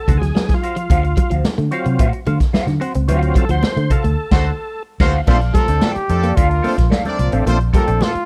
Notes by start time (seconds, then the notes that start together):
Already playing: A4
0.08 D2 F#4 C5 F#5, muted clean electric guitar stroke, kick, closed hi-hat, muted conga, low conga
0.17 G#4
0.22 F#3, muted clean electric guitar stroke, snare, closed hi-hat
0.35 F#3, muted clean electric guitar stroke, snare, high conga
0.49 muted clean electric guitar stroke, kick, snare, closed hi-hat, high conga
0.54 F4
0.63 F#4 C5 F5, closed hi-hat
0.76 F3, closed hi-hat
0.90 D2 F#4 C5 F5, kick, closed hi-hat, muted conga
1.04 muted clean electric guitar stroke, closed hi-hat
1.17 F#3, muted clean electric guitar stroke, kick, closed hi-hat, muted conga
1.30 D2 F3 F#4 C5 F5, closed hi-hat
1.45 snare, high conga
1.58 D3 A3, closed hi-hat
1.71 F#3 C4 F4 F#4 C5 F5, muted clean electric guitar stroke, closed hi-hat
1.85 C3 F#3, closed hi-hat
1.99 A2 F#4 C5 F5, kick, closed hi-hat
2.13 muted clean electric guitar stroke, closed hi-hat
2.26 D3 A3 F#4 C5 F5, closed hi-hat, muted conga
2.40 kick, snare, closed hi-hat
2.53 F#4 C5 F5, muted clean electric guitar stroke, snare, high conga
2.67 D3, muted clean electric guitar stroke, snare, closed hi-hat, high conga
2.80 C4 F#4 C5 F#5, closed hi-hat
2.94 C#2 C4, muted clean electric guitar stroke, closed hi-hat
3.08 D2 F#3 C4 F4 F#4 C5 F5, closed hi-hat, muted conga
3.22 muted clean electric guitar stroke, closed hi-hat
3.35 F#3 A4, muted clean electric guitar stroke, kick, closed hi-hat, muted conga
3.49 D2 F3 F#4 C5 F#5, closed hi-hat
3.63 muted fingered electric bass stroke, muted clean electric guitar stroke, snare, high conga
3.77 D3 A3, closed hi-hat
3.90 F#4 A4 C5 F5, muted clean electric guitar stroke, kick, closed hi-hat, low conga
4.04 D2 A3, closed hi-hat
4.31 D2 F#4 A4 C5 F#5, kick, snare, crash
5.00 D2 F#4 A4 C5 F5, kick, snare, crash
5.27 A#1 A3 A#3 C4 D4 F4 A4 C5 D5 F5, kick, crash, muted conga
5.40 muted clean electric guitar stroke, closed hi-hat
5.54 A#2 F3 G3 D4 F4 A4 A#4, kick, closed hi-hat, muted conga
5.67 D2 A3 C4 D4, muted clean electric guitar stroke, closed hi-hat
5.81 A#2 F3 A3 D4 F4 A4 D5 G5, snare, high conga
5.94 G4, muted clean electric guitar stroke, muted fingered electric bass stroke, closed hi-hat
6.09 F2 A3 C4 D4 F4 A4, muted clean electric guitar stroke, closed hi-hat
6.23 A#3 C4 D4 A4 D5 F5, closed hi-hat
6.36 D2 F4 A4 D5 F5, kick, closed hi-hat, muted conga
6.50 D4 F4 A#4, muted clean electric guitar stroke, closed hi-hat
6.63 A3 A#3 C4 D4 F4 A4 C5 D5 F5, open hi-hat, muted conga
6.77 A#1, muted clean electric guitar stroke, kick, snare, closed hi-hat
6.90 A3 A4 D5 F5, snare, high conga
7.05 A3 C4 D4 A#4 D5, snare, closed hi-hat, high conga
7.18 C2 A#2 F3, muted clean electric guitar stroke, closed hi-hat
7.31 A1 A3 C4 D4 A4 D5 F5, closed hi-hat
7.46 A#1 A3 A#3 C4 D4 F4 A4 C5, closed hi-hat, muted conga
7.60 muted clean electric guitar stroke, closed hi-hat
7.73 A#2 F3 G3 D4 F4 A4 A#4 D5 G5, kick, closed hi-hat, muted conga
7.87 A#1 A3 C4 D4, closed hi-hat
8.01 A#2 F3 A3 D4 F4 A4, snare, high conga
8.14 muted clean electric guitar stroke, muted fingered electric bass stroke, closed hi-hat